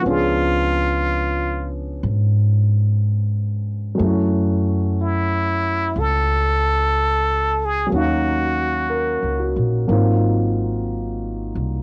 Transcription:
Already playing: F#4
0.00 F3 B3
0.05 C#2 C#4 D4 F4
0.10 G#4
2.03 G#2
3.95 F#3 A3
3.99 F#2 C#4 E4
4.06 F#4
5.01 E4
5.96 C#2 A4
7.65 G#4
7.86 F#3 A#3
7.92 D#2 C#4 D#4 F#4
7.98 F5
8.89 A#4
9.23 C#2
9.40 F#4
9.56 A#1
9.87 G#1 F#3 A#3 C4 D#4
9.92 F4
11.55 C2

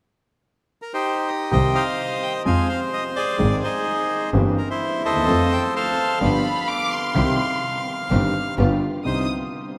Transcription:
0.82 A#4
0.94 D#4 G4 C5
1.28 D#5
1.51 C2 C3 D#3 G3 C4 G4 C5 D#5 G5
1.75 C5 F5
2.23 G5
2.45 F2 F3 G#3 C4 G#4 C5 F5 G#5
2.69 F5
2.93 D#5
3.16 G#4 D5
3.38 G#1 G#2 D#3 G#3 C4 G#4
3.63 D#4 G#4 C5
4.33 G1 G2 E3 A#3 C4 G4
4.58 A#4
4.70 E4 C5
5.04 D#2 A4 C5 D#5
5.10 D2
5.16 D#2
5.22 E2
5.27 F2 F3 A3 C4 F4 A4
5.52 G5
5.76 A4 C5 F5
6.20 G1 G2 F3 B3 D4 F4 G4 B5
6.68 D6
6.92 C6
7.15 C2 C3 D#3 G3 C4 D#4 G4
8.10 G1 G2 D#3 G3 C4 D#4 G4
8.57 G1 G2 D3 G3 B3 F4 G4
9.04 C2 G3 C4 D#4 G4 C5 D#6

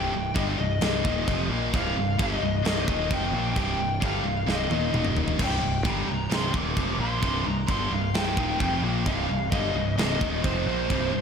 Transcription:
Already playing: C1 C2 G2 C3 G5
0.12 C1 C2 G2
0.35 G1 G2 D3 G3 D#5, kick, china
0.58 C1 C2 G2 D#5
0.81 C1 C2 G2 C3, snare, china
1.04 D#1 D#2 A#2 D#3, kick
1.27 F1 F2 C3 F3, kick, china
1.49 A#1 A#2 F3 A#3
1.73 C1 C2 G2 C3 F5, kick, china
1.95 C1 C2 G2
2.18 G1 G2 D3 G3 D#5, kick, china
2.41 C1 C2 G2
2.62 C1 C2 G2 C3, snare, china
2.67 D#5
2.86 D#1 D#2 A#2 D#3, kick
3.08 F1 F2 C3 F3, kick, china
3.14 G5
3.32 A#1 A#2 F3 A#3
3.55 C1 C2 G2 C3 G5, kick, china
3.78 C1 C2 G2
4.00 G1 G2 D3 G3 F5, kick, china
4.23 C1 C2 G2
4.46 C1 C2 G2 C3, snare
4.51 D#5
4.70 D#1 D#2 A#2 D#3, high tom
4.93 D#1 D#2 A#2 D#3, mid tom
5.05 mid tom
5.17 floor tom
5.28 floor tom
5.39 C1 C2 G2 C3, kick, china, crash
5.44 G5
5.61 C1 C2 G2
5.84 G1 G2 D3 G3, kick, china
5.90 A#5
6.06 C1 C2 G2
6.30 C1 C2 G2 C3, snare, china
6.35 C6
6.54 D#1 D#2 A#2 D#3 D6, kick
6.76 F1 F2 C3 F3, kick, china
6.99 A#1 A#2 F3 A#3 C6
7.22 C1 C2 G2 C3, kick, china
7.45 C1 C2 G2 A#5
7.68 G1 G2 D3 G3 C6, kick, china
7.90 C1 C2 G2 F5
8.13 C1 C2 G2 C3 G5, snare, china
8.37 D#1 D#2 A#2 D#3, kick
8.60 F1 F2 C3 F3, kick, china
8.82 A#1 A#2 F3 A#3
9.06 C1 C2 G2 C3 F5, kick, china
9.29 C1 C2 G2
9.51 G1 G2 D3 G3 D#5, kick, china
9.74 C1 C2 G2
9.96 C1 C2 G2 C3 D#5, snare, china
10.21 D#1 D#2 A#2 D#3, kick
10.43 F1 F2 C3 F3 C5, kick, china
10.66 A#1 A#2 F3 A#3
10.90 C1 C2 G2 C3, kick, china
11.12 C1 C2 G2

